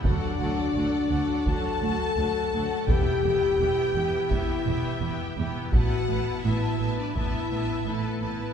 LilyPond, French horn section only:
\new Staff \with { instrumentName = "French horn section" } { \time 4/4 \key e \minor \tempo 4 = 84 d'2 a'2 | g'2 e'4. r8 | fis'4 e'8. d'16 e'4 a8. b16 | }